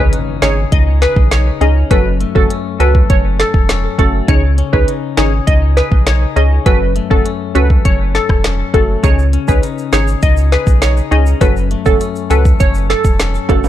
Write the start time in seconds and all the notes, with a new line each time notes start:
Already playing: C#3 C#4 D#4 G#4, impact
0.13 D#4, closed hi-hat
0.42 G#1 C#4 D#4 G#4 C#5, snare, closed hi-hat
0.72 C#2 D#4 D#5, kick, closed hi-hat
1.02 G#4 B4, snare, closed hi-hat
1.16 B1, kick
1.31 D#4 C#5, snare, closed hi-hat
1.61 C#2 C#4 D#4 G#4 D#5, closed hi-hat
1.90 F#1 F#2 C#4 F#4 A4 B4, kick, closed hi-hat
2.21 A3, closed hi-hat
2.35 F#1 C#4 F#4 A4, kick
2.50 C#4, closed hi-hat
2.80 C#2 C#4 F#4 A4 B4, closed hi-hat
2.95 kick
3.10 F#1 C#4 C#5, kick, closed hi-hat
3.39 A4, snare, closed hi-hat
3.54 E1, kick
3.69 C#4, snare, closed hi-hat
3.98 F#1 A3 C#4 F#4 A4, kick, closed hi-hat
4.28 C#2 C#3 C#4 D#4 G#4 C#5, kick, closed hi-hat
4.58 C#4, closed hi-hat
4.73 C#2 C#4 D#4 G#4 B4, kick
4.88 D#4, closed hi-hat
5.17 G#1 C#4 D#4 G#4 C#5, snare, closed hi-hat
5.47 C#2 D#4 D#5, kick, closed hi-hat
5.77 G#4 B4, snare, closed hi-hat
5.92 B1, kick
6.07 D#4 C#5, snare, closed hi-hat
6.36 C#2 C#4 D#4 G#4 D#5, closed hi-hat
6.66 F#1 F#2 C#4 F#4 A4 B4, kick, closed hi-hat
6.96 A3, closed hi-hat
7.10 F#1 C#4 F#4 A4, kick
7.26 C#4, closed hi-hat
7.55 C#2 C#4 F#4 A4 B4, closed hi-hat
7.70 kick
7.85 F#1 C#4 C#5, kick, closed hi-hat
8.15 A4, snare, closed hi-hat
8.29 E1, kick, cross-stick
8.44 C#4, snare, closed hi-hat
8.74 F#1 A3 C#4 F#4 A4, kick, closed hi-hat
9.03 C#2 C#3 C#4 D#4 G#4 C#5, kick, closed hi-hat, shaker
9.19 shaker
9.33 C#4, closed hi-hat
9.48 C#2 C#4 D#4 G#4 B4, kick, shaker
9.63 D#4, closed hi-hat, shaker
9.78 shaker
9.93 G#1 C#4 D#4 G#4 C#5, snare, closed hi-hat, shaker
10.08 shaker
10.22 C#2 D#4 D#5, kick, closed hi-hat, shaker
10.37 shaker
10.52 G#4 B4, snare, closed hi-hat
10.67 B1, kick, shaker
10.82 D#4 C#5, snare, closed hi-hat, shaker
10.97 shaker
11.11 C#2 C#4 D#4 G#4 D#5, closed hi-hat
11.26 shaker
11.41 F#1 F#2 C#4 F#4 A4 B4, kick, closed hi-hat, shaker
11.57 shaker
11.71 A3, closed hi-hat
11.86 F#1 C#4 F#4 A4, kick, shaker
12.01 C#4, closed hi-hat, shaker
12.16 shaker
12.30 C#2 C#4 F#4 A4 B4, closed hi-hat, shaker
12.45 kick, shaker
12.60 F#1 C#4 C#5, kick, closed hi-hat, shaker
12.74 shaker
12.90 A4, snare, closed hi-hat
13.04 E1, kick, shaker
13.19 C#4, snare, closed hi-hat, shaker
13.35 shaker
13.49 F#1 A3 C#4 F#4 A4, kick, closed hi-hat, high timbale
13.64 high timbale, shaker